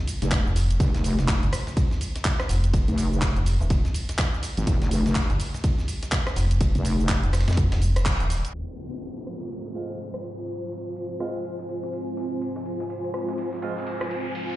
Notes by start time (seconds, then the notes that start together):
Already playing: G#3 C4 F4 G#4
0.07 open hi-hat, ride, shaker
0.22 F1, snare, closed hi-hat, shaker
0.31 kick, snare, clap, closed hi-hat, ride, shaker
0.46 F1, shaker
0.56 snare, open hi-hat, ride, shaker
0.70 closed hi-hat, shaker
0.80 F1 C5, kick, closed hi-hat, ride, shaker
0.95 snare, closed hi-hat, shaker
1.04 open hi-hat, ride, shaker
1.19 F1, snare, shaker
1.28 kick, snare, clap, closed hi-hat, ride, shaker
1.43 G1, closed hi-hat, ride, shaker
1.53 cross-stick, open hi-hat, ride, shaker
1.67 snare, shaker
1.77 kick, closed hi-hat, ride, shaker
1.91 snare, shaker
2.01 open hi-hat, ride, shaker
2.16 snare, closed hi-hat, shaker
2.25 kick, snare, clap, closed hi-hat, ride, shaker
2.40 cross-stick, snare, shaker
2.49 F1, snare, open hi-hat, ride, shaker
2.64 closed hi-hat, shaker
2.74 kick, closed hi-hat, ride, shaker
2.88 F1, closed hi-hat, ride, shaker
2.98 open hi-hat, ride, shaker
3.13 shaker
3.21 kick, snare, clap, closed hi-hat, ride, shaker
3.36 F1, closed hi-hat, shaker
3.46 open hi-hat, ride, shaker
3.61 D#1, shaker
3.70 kick, closed hi-hat, ride, shaker
3.85 snare, shaker
3.94 open hi-hat, ride, shaker
4.09 snare, closed hi-hat, shaker
4.18 kick, snare, clap, closed hi-hat, ride, shaker
4.34 shaker
4.43 snare, open hi-hat, ride, shaker
4.57 G#1, closed hi-hat, shaker
4.67 F1 G4, kick, closed hi-hat, ride, shaker
4.82 snare, closed hi-hat, shaker
4.91 open hi-hat, ride, shaker
5.06 F1, snare, shaker
5.15 kick, snare, clap, closed hi-hat, ride, shaker
5.30 G1, closed hi-hat, ride, shaker
5.40 open hi-hat, ride, shaker
5.54 snare, shaker
5.64 kick, closed hi-hat, ride, shaker
5.79 snare, shaker
5.88 open hi-hat, ride, shaker
6.03 snare, closed hi-hat, shaker
6.12 kick, snare, clap, closed hi-hat, ride, shaker
6.27 cross-stick, snare, shaker
6.36 F1, snare, open hi-hat, ride, shaker
6.51 closed hi-hat, shaker
6.61 kick, closed hi-hat, ride, shaker
6.75 F1, closed hi-hat, ride, shaker
6.85 open hi-hat, ride, shaker
7.00 shaker
7.09 kick, snare, clap, closed hi-hat, ride, shaker
7.24 F1, closed hi-hat, shaker
7.33 cross-stick, snare, open hi-hat, ride, shaker
7.41 snare, ride
7.48 F2, snare, ride, shaker
7.53 snare, ride
7.57 F1, kick, closed hi-hat, ride, shaker
7.72 F1, snare, closed hi-hat, ride, shaker
7.82 open hi-hat, ride, shaker
7.96 cross-stick, closed hi-hat, ride, shaker
8.05 kick, snare, clap, closed hi-hat, ride, shaker
8.20 D#1, closed hi-hat, ride, shaker
8.30 open hi-hat, ride, shaker
8.45 closed hi-hat, shaker
8.54 G#3 C4 F4 C5, ride, downlifter
8.69 snare
8.78 ride
8.83 C5
8.93 snare
9.03 ride
9.17 ride
9.27 cross-stick, ride
9.41 snare
9.51 ride
9.66 snare
9.75 G#3 C4 F4, ride
9.90 snare
9.99 ride
10.14 cross-stick, snare
10.23 G#5, ride
10.48 ride
10.62 ride
10.72 ride
10.96 ride
11.20 G#3 C4 F4, cross-stick, ride
11.44 ride
11.59 snare
11.69 ride
11.83 snare
11.93 ride
12.17 snare, ride
12.41 ride, riser
12.56 snare
12.66 ride
12.80 snare
12.90 ride
13.04 ride
13.14 cross-stick, ride
13.29 snare
13.38 ride
13.53 snare
13.62 G#3 C4 F4, ride
13.77 snare
13.87 ride
14.01 cross-stick, snare
14.11 ride
14.35 ride
14.50 ride